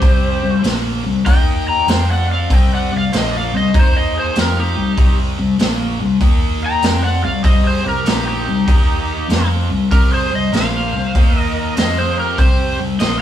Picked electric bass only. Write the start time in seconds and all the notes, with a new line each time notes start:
0.02 C2
0.44 C2
0.64 A#1
1.05 C2
1.26 D#2
1.87 F2
2.51 C2
2.92 C2
3.13 A#1
3.53 C2
3.75 D#2
4.37 F2
4.78 C2
4.98 C2
5.40 C2
5.60 A#1
6.01 C2
6.21 D#2
6.83 F2
7.24 C2
7.44 C2
7.86 C2
8.08 A#1
8.48 C2
8.68 D#2
9.29 F2
9.70 C2
9.92 C2
10.33 C2
10.53 A#1
10.93 C2
11.15 D#2
11.77 F2
12.39 C2
12.80 C2
13.01 A#1